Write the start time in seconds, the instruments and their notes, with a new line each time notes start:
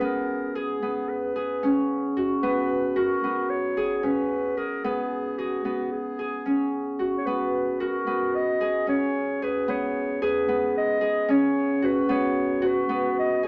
Already playing: harp C#4 F#4 G#4
0.01 harp B3, clarinet A#4
0.55 harp G#4, clarinet G#4
0.82 harp B3
1.09 clarinet B4
1.36 harp G#4
1.63 harp C#4
2.17 harp F#4
2.43 harp B3, clarinet B4
2.96 harp F#4, clarinet A#4
3.24 harp B3
3.50 clarinet C#5
3.77 harp G#4
3.97 clarinet C#5
4.03 harp C#4, clarinet B4
4.57 harp G#4, clarinet A#4
4.84 harp B3, clarinet G#4
5.38 clarinet F#4, harp G#4
5.65 harp B3
5.92 clarinet G#4
6.19 harp G#4
6.46 harp C#4
6.99 harp F#4
7.18 clarinet C#5
7.26 harp B3, clarinet B4
7.80 harp F#4, clarinet A#4
8.07 harp B3
8.35 clarinet D#5
8.61 harp G#4
8.87 harp C#4, clarinet C#5
9.42 harp G#4, clarinet B4
9.68 harp B3, clarinet C#5
10.22 harp G#4, clarinet B4
10.48 harp B3
10.77 clarinet D#5
11.01 harp G#4
11.28 harp C#4, clarinet C#5
11.82 harp F#4, clarinet B4
12.09 harp B3, clarinet C#5
12.62 harp F#4
12.66 clarinet B4
12.89 harp B3
13.19 clarinet D#5
13.43 harp G#4